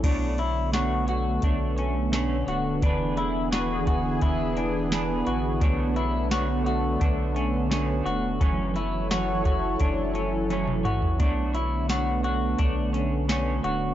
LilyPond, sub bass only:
\new Staff \with { instrumentName = "Sub bass" } { \clef bass \time 4/4 \key b \dorian \tempo 4 = 86 b,,2 b,,4. d,,8 | e,,2 e,,4. a,,8 | b,,2 b,,4. e,,8 | fis,,2 fis,,4. a,,8 |
b,,2 b,,4. d,,8 | }